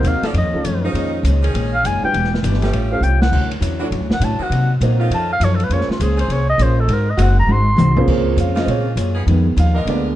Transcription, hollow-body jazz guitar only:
0.05 0.25 C3 medium
0.05 0.26 F#3 medium
0.05 0.26 A#3 medium
0.05 0.26 D#4 medium
0.35 0.55 F2 soft
0.35 0.55 D#3 medium
0.35 0.56 A3 soft
0.35 0.56 C#4 medium
0.65 0.85 F2 medium
0.65 0.85 D#3 medium
0.65 0.85 A3 medium
0.65 0.86 C#4 medium
0.94 1.14 A#2 medium
0.94 1.15 D#3 medium
0.94 1.15 G#3 medium
0.94 1.15 C#4 medium
1.25 1.45 A#2 medium
1.25 1.45 D#3 medium
1.25 1.45 G#3 medium
1.25 1.45 C#4 medium
1.54 1.74 A#2 soft
1.54 1.74 D#3 medium
1.54 1.75 G#3 medium
1.54 1.75 C#4 medium
1.85 2.04 A#2 medium
1.85 2.05 D#3 medium
1.85 2.05 G#3 medium
1.85 2.05 C#4 medium
2.14 2.34 E3 soft
2.14 2.34 B3 soft
2.14 2.34 D4 medium
2.14 2.35 G4 medium
2.43 2.63 E3 medium
2.43 2.63 B3 medium
2.43 2.64 D4 medium
2.43 2.64 G4 medium
2.72 2.92 A2 soft
2.72 2.93 G3 soft
2.72 2.93 C#4 medium
2.72 2.93 F4 medium
3.03 3.23 A2 medium
3.03 3.23 G3 medium
3.03 3.23 C#4 medium
3.03 3.23 F4 medium
3.31 3.52 D3 soft
3.31 3.52 F#3 soft
3.31 3.53 C#4 soft
3.31 3.53 E4 medium
3.61 3.81 D3 medium
3.61 3.81 F#3 medium
3.61 3.81 C#4 medium
3.61 3.82 E4 medium
3.91 4.11 D3 medium
3.91 4.12 F#3 medium
3.91 4.12 C#4 medium
3.91 4.12 E4 medium
4.20 4.41 D3 medium
4.20 4.41 F#3 medium
4.20 4.41 C#4 medium
4.20 4.42 E4 medium
4.51 4.71 C3 soft
4.51 4.71 F#3 soft
4.51 4.72 A#3 soft
4.51 4.72 D#4 medium
4.82 5.01 C3 medium
4.82 5.02 F#3 medium
4.82 5.02 A#3 medium
4.82 5.02 D#4 medium
5.12 5.31 F3 soft
5.12 5.32 C#4 medium
5.12 5.32 D#4 medium
5.12 5.32 A4 medium
5.42 5.61 F3 medium
5.42 5.61 C#4 medium
5.42 5.62 D#4 medium
5.42 5.62 A4 medium
5.72 5.91 A#3 medium
5.72 5.91 C#4 soft
5.72 5.91 G#4 medium
5.72 5.92 C5 medium
6.01 6.20 A#3 medium
6.01 6.20 C#4 medium
6.01 6.21 G#4 medium
6.01 6.21 C5 medium
6.30 6.50 A#3 soft
6.30 6.50 C#4 medium
6.30 6.51 G#4 soft
6.30 6.51 C5 medium
6.59 6.79 A#3 medium
6.59 6.79 C#4 medium
6.59 6.79 G#4 medium
6.59 6.80 C5 medium
6.89 7.09 G#3 medium
6.89 7.09 D#4 medium
6.89 7.10 F#4 medium
6.89 7.10 C5 medium
7.20 7.39 G#3 medium
7.20 7.39 D#4 medium
7.20 7.40 F#4 medium
7.20 7.40 C5 medium
7.48 7.68 G#3 soft
7.48 7.69 D#4 medium
7.48 7.69 F#4 medium
7.48 7.69 C5 medium
7.78 7.98 G#3 medium
7.78 7.98 D#4 medium
7.78 7.99 F#4 medium
7.78 7.99 C5 medium
8.07 8.27 A#3 medium
8.07 8.28 F4 medium
8.07 8.29 G#4 medium
8.07 8.29 C#5 medium
8.36 8.57 A#3 medium
8.36 8.57 F4 medium
8.36 8.58 G#4 medium
8.36 8.58 C#5 medium
8.66 8.87 A#3 medium
8.66 8.87 F4 soft
8.66 8.87 G#4 medium
8.66 8.88 C#5 medium
8.97 9.17 A#3 medium
8.97 9.17 F4 medium
8.97 9.17 G#4 medium
8.97 9.17 C#5 medium
9.26 9.46 F3 medium
9.26 9.47 D#4 medium
9.26 9.47 G#4 medium
9.26 9.47 B4 medium
9.57 9.77 F3 medium
9.57 9.77 D#4 medium
9.57 9.77 G#4 medium
9.57 9.77 B4 medium
9.86 10.06 A#3 medium
9.86 10.07 D4 medium
9.86 10.07 G#4 soft
9.86 10.07 B4 medium

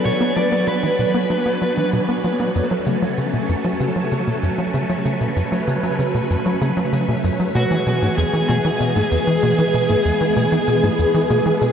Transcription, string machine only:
0.00 7.51 F#3 medium
0.00 2.51 B3 medium
0.00 2.51 D4 medium
0.00 2.51 B4 medium
2.55 7.51 A3 medium
2.55 7.51 C#4 medium
2.55 5.03 A4 medium
5.05 7.53 B4 medium
7.55 11.72 E3 medium
7.55 11.72 G#3 medium
7.55 11.72 B3 medium
7.55 11.72 G#4 medium

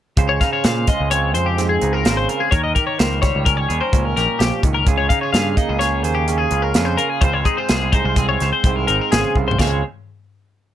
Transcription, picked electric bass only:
0.17 0.38 C#2 medium
0.65 0.85 A#2 medium
1.00 1.36 C#2 medium
1.36 1.77 F2 medium
1.82 2.03 C#2 medium
2.05 2.26 G#1 medium
2.52 2.73 D#2 loud
3.00 3.31 C#2 medium
3.35 3.66 C#2 medium
3.70 3.80 D#2 medium
3.93 4.14 C#2 medium
4.16 4.27 A#1 medium
4.40 4.50 A#1 loud
4.63 4.84 C#2 medium
4.87 5.07 C#2 loud
5.34 5.54 G2 medium
5.69 6.04 C#2 medium
6.04 6.46 D#2 medium
6.51 6.72 C#2 medium
6.75 6.96 F2 medium
7.21 7.43 C#2 medium
7.70 8.01 C2 medium
8.04 8.36 C2 medium
8.41 8.51 C#2 medium
8.64 8.85 C2 medium
8.89 8.99 G#1 medium
9.12 9.23 G#1 medium
9.36 9.57 C2 medium
9.60 9.82 C#2 medium

